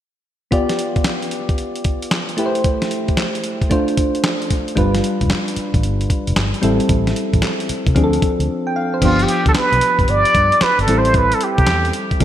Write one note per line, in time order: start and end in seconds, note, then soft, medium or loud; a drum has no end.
0.51 2.34 B3 medium
0.51 2.34 F4 medium
0.51 2.35 G4 medium
0.51 2.35 D5 medium
0.51 kick loud
0.51 closed hi-hat medium
0.69 snare medium
0.69 closed hi-hat medium
0.79 closed hi-hat medium
0.96 kick medium
0.96 closed hi-hat soft
1.04 snare loud
1.04 clap medium
1.04 closed hi-hat medium
1.22 closed hi-hat medium
1.31 closed hi-hat medium
1.49 kick medium
1.49 closed hi-hat soft
1.58 closed hi-hat medium
1.76 closed hi-hat medium
1.84 kick medium
1.84 closed hi-hat medium
2.02 closed hi-hat medium
2.11 snare loud
2.11 clap medium
2.11 closed hi-hat medium
2.29 closed hi-hat medium
2.37 3.68 A3 medium
2.37 3.68 E4 medium
2.37 3.68 G4 medium
2.37 2.47 B4 medium
2.37 closed hi-hat medium
2.46 3.71 C5 medium
2.55 closed hi-hat medium
2.64 kick loud
2.64 closed hi-hat medium
2.82 snare medium
2.82 closed hi-hat medium
2.91 closed hi-hat medium
3.08 kick medium
3.08 closed hi-hat soft
3.17 snare loud
3.17 clap medium
3.17 closed hi-hat medium
3.35 closed hi-hat medium
3.44 closed hi-hat medium
3.62 kick medium
3.62 closed hi-hat soft
3.70 4.74 A3 medium
3.70 4.75 D4 medium
3.70 4.75 F4 medium
3.70 4.76 C5 medium
3.70 kick medium
3.70 closed hi-hat medium
3.88 closed hi-hat soft
3.97 kick medium
3.97 closed hi-hat medium
4.15 closed hi-hat medium
4.24 snare loud
4.24 clap medium
4.24 closed hi-hat medium
4.42 closed hi-hat medium
4.50 kick medium
4.50 closed hi-hat medium
4.68 closed hi-hat medium
4.76 4.99 G1 loud
4.76 6.58 G3 medium
4.76 6.59 D4 medium
4.76 6.59 F4 medium
4.76 6.60 B4 medium
4.76 kick loud
4.76 closed hi-hat medium
4.95 snare medium
4.95 closed hi-hat medium
5.04 closed hi-hat medium
5.21 5.29 F1 medium
5.21 kick medium
5.21 closed hi-hat soft
5.30 snare loud
5.30 clap medium
5.30 closed hi-hat medium
5.48 closed hi-hat medium
5.56 muted fingered electric bass stroke soft
5.56 closed hi-hat medium
5.74 5.82 A1 medium
5.74 kick medium
5.74 closed hi-hat soft
5.83 6.06 G1 medium
5.83 closed hi-hat medium
6.01 closed hi-hat medium
6.10 kick medium
6.10 closed hi-hat medium
6.27 6.35 F1 medium
6.27 closed hi-hat medium
6.36 6.51 G1 medium
6.36 snare loud
6.36 clap medium
6.36 closed hi-hat medium
6.54 closed hi-hat medium
6.62 6.78 A1 medium
6.62 7.92 G3 medium
6.62 7.93 C4 medium
6.62 7.93 E4 medium
6.62 7.94 A4 medium
6.62 closed hi-hat medium
6.80 closed hi-hat medium
6.89 7.12 A1 loud
6.89 kick loud
6.89 closed hi-hat medium
7.07 snare medium
7.07 closed hi-hat medium
7.16 closed hi-hat medium
7.33 7.41 A1 medium
7.33 kick medium
7.33 closed hi-hat soft
7.42 snare loud
7.42 clap medium
7.42 closed hi-hat medium
7.60 closed hi-hat medium
7.69 muted fingered electric bass stroke soft
7.69 closed hi-hat medium
7.87 7.94 C2 medium
7.87 kick medium
7.87 closed hi-hat soft
7.95 8.18 D2 loud
7.95 8.99 F3 medium
7.95 9.00 C4 medium
7.95 9.00 D4 medium
7.95 8.05 G#4 medium
7.95 kick medium
7.95 closed hi-hat medium
8.04 9.04 A4 medium
8.13 closed hi-hat soft
8.22 muted fingered electric bass stroke soft
8.22 kick medium
8.22 closed hi-hat medium
8.39 8.47 D2 medium
8.39 closed hi-hat medium
8.67 8.75 G5 medium
8.76 8.92 F5 medium
8.94 9.19 C5 medium
9.02 9.24 G1 loud
9.02 10.84 F3 medium
9.02 10.84 B3 medium
9.02 10.85 D4 medium
9.02 9.24 F4 medium
9.02 10.85 G4 medium
9.02 kick loud
9.02 closed hi-hat medium
9.02 crash medium
9.19 9.48 G4 medium
9.19 closed hi-hat medium
9.28 closed hi-hat medium
9.46 9.54 D2 medium
9.46 9.52 A4 medium
9.46 kick medium
9.46 closed hi-hat soft
9.55 10.11 B4 loud
9.55 snare loud
9.55 clap medium
9.55 closed hi-hat medium
9.72 9.80 B1 medium
9.72 closed hi-hat medium
9.81 closed hi-hat medium
9.99 10.07 G1 medium
9.99 kick medium
9.99 closed hi-hat soft
10.08 10.23 G1 medium
10.08 10.65 D5 loud
10.08 closed hi-hat medium
10.25 closed hi-hat medium
10.35 10.49 G2 loud
10.35 kick medium
10.35 closed hi-hat medium
10.52 closed hi-hat medium
10.61 10.80 B4 loud
10.61 muted fingered electric bass stroke soft
10.61 snare loud
10.61 clap medium
10.61 closed hi-hat medium
10.79 10.86 G1 medium
10.79 11.00 A4 medium
10.79 closed hi-hat medium
10.87 11.32 A1 medium
10.87 12.18 G3 medium
10.87 12.18 C4 medium
10.87 12.18 E4 medium
10.87 12.19 A4 medium
10.87 closed hi-hat medium
10.98 11.15 C5 medium
11.05 closed hi-hat medium
11.14 11.36 B4 loud
11.14 kick loud
11.14 closed hi-hat medium
11.32 11.45 A4 medium
11.32 closed hi-hat medium
11.41 11.95 G4 medium
11.41 closed hi-hat medium
11.58 11.66 C2 medium
11.58 kick medium
11.58 closed hi-hat soft
11.67 11.90 E2 medium
11.67 snare loud
11.67 clap medium
11.67 closed hi-hat medium
11.85 closed hi-hat medium
11.93 closed hi-hat medium
12.11 kick medium
12.11 closed hi-hat soft
12.20 12.24 D2 loud
12.20 12.24 F3 medium
12.20 12.24 C4 medium
12.20 kick loud
12.20 closed hi-hat medium